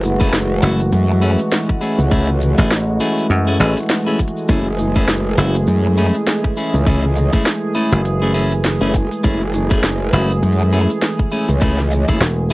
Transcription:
Already playing: wobble bass F#1, analog synth pad E3 G#3 A3 F#4
0.03 closed hi-hat, shaker
0.20 clean electric guitar A3 C#4 E4 G#4, kick, cross-stick, closed hi-hat, shaker
0.33 wobble bass F#1, snare, closed hi-hat, shaker
0.62 slap bass F#1, clean electric guitar A3 C#4 E4 F#4, shaker
0.80 closed hi-hat, shaker
0.92 wobble bass F#2, closed hi-hat, shaker
1.21 clean electric guitar A3 C#4 E4 G#4, closed hi-hat, shaker
1.38 closed hi-hat, shaker
1.51 snare, closed hi-hat, shaker
1.69 kick
1.81 clean electric guitar A3 C#4 E4 G#4, shaker
1.99 wobble bass C#2, closed hi-hat, shaker
2.11 clean electric guitar A3 C#4 E4 G#4, kick, closed hi-hat, shaker
2.41 closed hi-hat, shaker
2.58 slap bass A1, clean electric guitar A3 C#4 E4 G#4, kick, cross-stick, closed hi-hat, shaker
2.70 snare, closed hi-hat, shaker
3.00 clean electric guitar A3 C#4 E4 G#4, closed hi-hat, shaker
3.18 closed hi-hat, shaker
3.30 slap bass F#2, closed hi-hat, shaker
3.47 clean electric guitar A3 C#4 E4 G#4
3.60 slap bass A1, clean electric guitar A3 C#4 E4 G#4, closed hi-hat, shaker
3.77 closed hi-hat, shaker
3.80 closed hi-hat
3.83 closed hi-hat
3.86 snare, closed hi-hat
3.90 closed hi-hat, shaker
3.98 closed hi-hat
4.03 clean electric guitar E4, closed hi-hat
4.07 clean electric guitar A3 C#4 G#4
4.19 kick, shaker
4.28 closed hi-hat
4.37 shaker
4.48 wobble bass F#1, clean electric guitar A3 C#4 E4 G#4, analog synth pad G#4, kick, closed hi-hat, shaker
4.78 closed hi-hat, shaker
4.95 clean electric guitar A3 C#4 E4 G#4, kick, cross-stick, closed hi-hat, shaker
4.98 closed hi-hat
5.02 closed hi-hat
5.04 closed hi-hat
5.06 wobble bass F#1, snare, closed hi-hat, shaker
5.08 closed hi-hat
5.38 slap bass F#1, clean electric guitar A3 C#4 E4 F#4, shaker
5.55 closed hi-hat, shaker
5.67 wobble bass F#2, closed hi-hat, shaker
5.97 clean electric guitar A3 C#4 E4 G#4, closed hi-hat, shaker
6.14 closed hi-hat, shaker
6.27 snare, closed hi-hat, shaker
6.44 kick
6.57 clean electric guitar A3 C#4 E4 G#4, shaker
6.74 wobble bass C#2, closed hi-hat, shaker
6.86 clean electric guitar A3 C#4 E4 G#4, kick, closed hi-hat, shaker
7.16 closed hi-hat, shaker
7.33 clean electric guitar A3 C#4 E4 G#4, kick, cross-stick, closed hi-hat, shaker
7.45 snare, closed hi-hat, shaker
7.75 clean electric guitar A3 C#4 E4 G#4, shaker
7.92 slap bass F#1, closed hi-hat, shaker
8.05 closed hi-hat, shaker
8.22 clean electric guitar A3 C#4 E4 G#4
8.34 clean electric guitar A3 C#4 E4 G#4, closed hi-hat, shaker
8.51 closed hi-hat, shaker
8.64 snare, closed hi-hat, shaker
8.81 wobble bass F#1, clean electric guitar A3 C#4 E4 G#4
8.94 kick, shaker
9.11 closed hi-hat, shaker
9.23 wobble bass F#1, clean electric guitar A3 C#4 E4 G#4, kick, closed hi-hat, shaker
9.53 closed hi-hat, shaker
9.70 clean electric guitar A3 C#4 E4 G#4, kick, cross-stick, closed hi-hat, shaker
9.83 wobble bass F#1, snare, closed hi-hat, shaker
10.13 slap bass F#1, clean electric guitar A3 C#4 E4 F#4, shaker
10.30 closed hi-hat, shaker
10.43 wobble bass F#2, closed hi-hat, shaker
10.53 closed hi-hat
10.63 closed hi-hat
10.73 clean electric guitar A3 C#4 E4 G#4, closed hi-hat, shaker
10.89 closed hi-hat, shaker
11.02 snare, closed hi-hat, shaker
11.19 kick
11.31 clean electric guitar A3 C#4 E4 G#4, shaker
11.49 wobble bass C#2, closed hi-hat, shaker
11.61 clean electric guitar A3 C#4 E4 G#4, kick, closed hi-hat, shaker
11.79 snare
11.91 closed hi-hat, shaker
12.08 wobble bass F#1, clean electric guitar A3 C#4 E4 G#4, kick, cross-stick, closed hi-hat, shaker
12.20 slap bass E1, snare, closed hi-hat, shaker
12.50 shaker

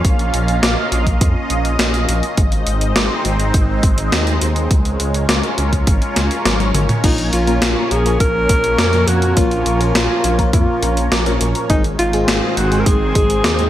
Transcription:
Already playing: analog synth pad A#3 C#4 F4 F5
0.05 detuned saw bass A#1, analog synth pad D#5, kick, closed hi-hat
0.19 closed hi-hat
0.34 detuned saw bass A#1, closed hi-hat
0.48 closed hi-hat
0.63 detuned saw bass A#1, snare, closed hi-hat
0.92 detuned saw bass A#1, closed hi-hat
1.07 kick, closed hi-hat
1.21 detuned saw bass F2, kick, closed hi-hat
1.50 detuned saw bass A#1, closed hi-hat
1.65 closed hi-hat
1.79 detuned saw bass A#1, snare, closed hi-hat
1.94 closed hi-hat
2.09 detuned saw bass A#1, closed hi-hat
2.23 closed hi-hat
2.37 detuned saw bass G#1, analog synth pad G#3 C4 D#4 C5, kick, closed hi-hat
2.52 closed hi-hat
2.67 detuned saw bass G#1, closed hi-hat
2.81 closed hi-hat
2.96 detuned saw bass G#1, snare, closed hi-hat
3.25 detuned saw bass G#1, closed hi-hat
3.40 closed hi-hat
3.54 detuned saw bass G#1, kick, closed hi-hat
3.83 detuned saw bass G#1, kick, closed hi-hat
3.98 closed hi-hat
4.12 detuned saw bass D#2, snare, closed hi-hat
4.27 closed hi-hat
4.41 detuned saw bass D#2, closed hi-hat
4.56 closed hi-hat
4.71 detuned saw bass C#2, analog synth pad C#4 F4 A#4 C#5, kick, closed hi-hat
4.85 closed hi-hat
5.00 detuned saw bass C#2, closed hi-hat
5.14 closed hi-hat
5.29 detuned saw bass C#2, snare, closed hi-hat
5.43 closed hi-hat
5.58 detuned saw bass C#2, closed hi-hat
5.73 kick, closed hi-hat
5.87 detuned saw bass G#1, kick, closed hi-hat
6.02 closed hi-hat
6.16 detuned saw bass C#2, snare, closed hi-hat
6.31 closed hi-hat
6.46 detuned saw bass G#1, snare, closed hi-hat, high tom
6.60 closed hi-hat, high tom
6.75 detuned saw bass G#1, closed hi-hat, mid tom
6.89 closed hi-hat, mid tom
7.04 detuned saw bass A#1, fm electric piano A#2 A#3 C#4 F4 A#4, analog synth pad F3 A#3, alto saxophone D#4, kick, closed hi-hat, crash
7.18 closed hi-hat
7.33 detuned saw bass A#1, alto saxophone F4, closed hi-hat
7.47 fm electric piano A#2 A#3 C#4 F4 A#4, closed hi-hat
7.62 detuned saw bass A#1, snare, closed hi-hat
7.91 detuned saw bass A#1, alto saxophone G#4, closed hi-hat
8.06 fm electric piano A#2 A#3 C#4 F4 A#4, closed hi-hat
8.20 detuned saw bass A#1, alto saxophone A#4, kick, closed hi-hat
8.49 detuned saw bass A#1, fm electric piano A#2 A#3 C#4 F4 A#4, kick, closed hi-hat
8.64 closed hi-hat
8.79 detuned saw bass F2, snare, closed hi-hat
8.93 fm electric piano A#2 A#3 C#4 F4 A#4, closed hi-hat
9.08 detuned saw bass F2, alto saxophone F#4, closed hi-hat
9.22 closed hi-hat
9.37 detuned saw bass A#1, fm electric piano A#2 A#3 C#4 F4 A#4, alto saxophone F4, kick, closed hi-hat
9.51 closed hi-hat
9.66 detuned saw bass A#1, closed hi-hat
9.81 fm electric piano A#2 A#3 C#4 F4 A#4, closed hi-hat
9.95 detuned saw bass A#1, alto saxophone F4, snare, closed hi-hat
10.24 detuned saw bass A#1, closed hi-hat
10.39 fm electric piano A#2 A#3 C#4 F4 A#4, kick, closed hi-hat
10.53 detuned saw bass F2, alto saxophone F4, kick, closed hi-hat
10.83 detuned saw bass A#1, fm electric piano A#2 A#3 C#4 F4 A#4, closed hi-hat
10.97 closed hi-hat
11.12 detuned saw bass A#1, snare, closed hi-hat
11.26 fm electric piano A#2 A#3 C#4 F4 A#4, closed hi-hat
11.41 detuned saw bass A#1, closed hi-hat
11.55 closed hi-hat
11.70 detuned saw bass G#1, fm electric piano G#2 G#3 C4 D#4 G#4, analog synth pad D#3 G#3 C4 G#4 C5, alto saxophone D#4, kick, closed hi-hat
11.84 closed hi-hat
11.99 detuned saw bass G#1, alto saxophone F4, closed hi-hat
12.13 fm electric piano G#2 G#3 C4 D#4 G#4, closed hi-hat
12.28 detuned saw bass G#1, snare, closed hi-hat
12.57 detuned saw bass G#1, alto saxophone F#4, closed hi-hat
12.72 fm electric piano G#2 G#3 C4 D#4 G#4, closed hi-hat
12.79 alto saxophone A#4
12.86 detuned saw bass G#1, alto saxophone G#4, kick, closed hi-hat
13.15 detuned saw bass G#1, fm electric piano G#2 G#3 C4 D#4 G#4, kick, closed hi-hat
13.30 closed hi-hat
13.44 detuned saw bass D#2, snare, closed hi-hat
13.59 fm electric piano G#2 G#3 C4 D#4 G#4, closed hi-hat

